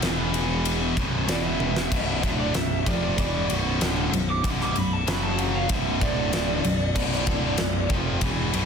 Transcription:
0.02 picked electric bass E1, distorted electric guitar E2 B2 E3, snare, ride
0.34 ride
0.65 ride
0.97 picked electric bass B0, distorted electric guitar B1 F#2 B2, kick, ride
1.28 picked electric bass E1, distorted electric guitar E2 B2 E3, lead electric guitar D5, snare, ride
1.44 lead electric guitar E5
1.60 high tom
1.76 snare
1.92 picked electric bass B0, distorted electric guitar B1 F#2 B2, kick, crash
2.23 picked electric bass D1, distorted electric guitar D2 A2 D3, kick, ride
2.40 lead electric guitar D5
2.54 picked electric bass B0, distorted electric guitar B1 F#2, lead electric guitar E5, snare, ride
2.86 picked electric bass F1, distorted electric guitar F2 C3 F3, lead electric guitar D5, kick, ride
3.18 picked electric bass E1, distorted electric guitar E2 B2 E3, lead electric guitar D5, kick, ride
3.49 picked electric bass B0, distorted electric guitar B1 F#2 B2, ride
3.81 picked electric bass D1, distorted electric guitar D2 A2 D3, snare, ride
4.12 picked electric bass B0, distorted electric guitar B1 F#2, ride
4.30 lead electric guitar D6
4.44 picked electric bass B0, distorted electric guitar B1 F#2 B2, kick, ride
4.61 lead electric guitar D6, snare
4.75 picked electric bass B0, distorted electric guitar B1 F#2, lead electric guitar B5, ride
4.93 lead electric guitar A5
5.07 picked electric bass F#1, distorted electric guitar F#2 C#3 F#3, lead electric guitar B5, snare, ride
5.23 lead electric guitar A5
5.38 lead electric guitar F#5, ride
5.56 lead electric guitar F5
5.69 picked electric bass B0, distorted electric guitar B1 F#2 B2, lead electric guitar E5, kick, ride
6.00 picked electric bass D1, distorted electric guitar D2 A2 D3, lead electric guitar D5, kick, ride
6.33 snare, ride
6.64 picked electric bass B0, distorted electric guitar B1 F#2, ride
6.96 distorted electric guitar B1 F#2 B2, kick, crash
7.12 snare
7.27 picked electric bass D1, distorted electric guitar D2 A2 D3, kick, ride
7.58 picked electric bass B0, distorted electric guitar B1 F#2, snare, ride
7.89 picked electric bass F1, distorted electric guitar F2 C3 F3, kick, ride
8.21 picked electric bass E1, distorted electric guitar E2 B2 E3, kick, ride
8.53 picked electric bass B0, distorted electric guitar B1 F#2 B2, ride

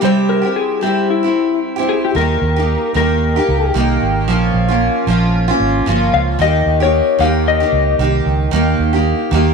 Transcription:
0.01 steel-string acoustic guitar C3 G3 C4 E4 G4, electric slide guitar C5
0.29 electric slide guitar A#4
0.42 steel-string acoustic guitar C4 E4 G4
0.56 electric slide guitar G#4
0.81 steel-string acoustic guitar G3 C4 E4 G4, electric slide guitar G4
1.10 electric slide guitar E4
1.23 steel-string acoustic guitar C4 E4 G4
1.76 steel-string acoustic guitar C4 E4 G4
1.89 electric slide guitar G#4
2.05 electric slide guitar G4
2.15 fingered electric bass D#2, steel-string acoustic guitar D#3 A#3 D#4 G4, electric slide guitar A#4
2.42 fingered electric bass D#2
2.56 steel-string acoustic guitar A#3 D#4 G4
2.94 fingered electric bass D#2, steel-string acoustic guitar D#3 A#3 D#4 G4, electric slide guitar A#4
3.36 steel-string acoustic guitar A#3 D#4 G4
3.49 fingered electric bass C#2
3.74 fingered electric bass C2, steel-string acoustic guitar D#3 A#3 D#4 G4
4.02 fingered electric bass G#1
4.28 fingered electric bass A#1, steel-string acoustic guitar F3 A#3 C#4 F4
4.54 fingered electric bass A#1
4.68 steel-string acoustic guitar A#3 C#4 F4
5.07 fingered electric bass A#1, steel-string acoustic guitar F3 A#3 C#4 F4
5.48 steel-string acoustic guitar A#3 C#4 F4
5.60 fingered electric bass G#1
5.86 fingered electric bass G1, steel-string acoustic guitar F3 A#3 C#4 F4
6.14 fingered electric bass C#2, electric slide guitar F5
6.39 fingered electric bass D#2, steel-string acoustic guitar D#3 A#3 D#4 G4, electric slide guitar D#5
6.66 fingered electric bass D#2
6.80 steel-string acoustic guitar A#3 D#4 G4, electric slide guitar C#5
7.19 fingered electric bass D#2, steel-string acoustic guitar D#3 A#3 D#4 G4, electric slide guitar F5
7.48 electric slide guitar D#5
7.60 steel-string acoustic guitar A#3 D#4 G4
7.72 fingered electric bass C#2
7.99 fingered electric bass C2, steel-string acoustic guitar D#3 A#3 D#4 G4
8.26 fingered electric bass C#2
8.51 fingered electric bass D#2, steel-string acoustic guitar D#3 A#3 D#4 G4
8.79 fingered electric bass D#2
8.93 steel-string acoustic guitar A#3 D#4 G4
9.31 fingered electric bass D#2, steel-string acoustic guitar D#3 A#3 D#4 G4

